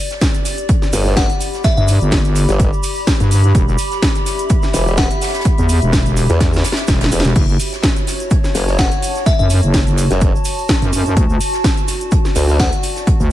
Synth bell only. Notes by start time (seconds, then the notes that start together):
1.17 F#5
1.64 E5
1.77 E5
4.98 F#5
8.79 F#5
9.26 E5
9.39 E5
12.60 F#5